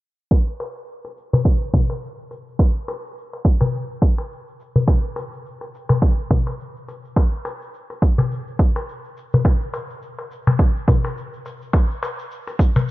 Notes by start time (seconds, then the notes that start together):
0.31 kick, darbuka tek, shaker
0.48 shaker
0.60 darbuka tek, shaker
0.76 shaker
0.89 shaker
1.05 darbuka ka, shaker
1.17 shaker
1.33 darbuka ka, darbuka tek, darbuka dum, shaker
1.45 kick, shaker
1.62 shaker
1.74 kick, darbuka dum, shaker
1.90 darbuka tek, shaker
2.03 shaker
2.19 shaker
2.31 darbuka tek, shaker
2.48 shaker
2.59 kick, darbuka tek, shaker
2.77 shaker
2.88 darbuka tek, shaker
3.05 shaker
3.18 shaker
3.33 darbuka ka, shaker
3.45 kick, shaker
3.61 darbuka tek, darbuka dum, shaker
3.75 shaker
3.91 shaker
4.02 kick, darbuka tek, shaker
4.18 darbuka tek, shaker
4.32 shaker
4.48 shaker
4.60 shaker
4.76 darbuka dum, shaker
4.87 kick, darbuka tek, shaker
5.05 shaker
5.16 darbuka tek, shaker
5.33 shaker
5.46 shaker
5.61 darbuka ka, shaker
5.74 shaker
5.89 darbuka ka, darbuka tek, darbuka dum, shaker
6.02 kick, shaker
6.19 shaker
6.31 kick, darbuka dum, shaker
6.47 darbuka tek, shaker
6.60 shaker
6.76 shaker
6.88 darbuka tek, shaker
7.05 shaker
7.16 kick, darbuka tek, shaker
7.33 shaker
7.45 darbuka tek, shaker
7.62 shaker
7.74 shaker
7.90 darbuka ka, shaker
8.02 kick, shaker
8.18 darbuka tek, darbuka dum, shaker
8.31 shaker
8.47 shaker
8.59 kick, darbuka tek, shaker
8.76 darbuka tek, shaker
8.89 shaker
9.05 shaker
9.17 shaker
9.33 darbuka dum, shaker
9.45 kick, darbuka tek, shaker
9.61 shaker
9.74 darbuka tek, shaker
9.90 shaker
10.02 shaker
10.18 darbuka ka, shaker
10.31 shaker
10.47 darbuka ka, darbuka tek, darbuka dum, shaker
10.59 kick, shaker
10.76 shaker
10.88 kick, darbuka dum, shaker
11.05 darbuka tek, shaker
11.17 shaker
11.33 shaker
11.46 darbuka tek, shaker
11.62 shaker
11.73 kick, darbuka tek, shaker
11.91 shaker
12.03 darbuka tek, shaker
12.19 shaker
12.31 shaker
12.47 darbuka ka, shaker
12.59 kick, shaker
12.76 darbuka tek, darbuka dum, shaker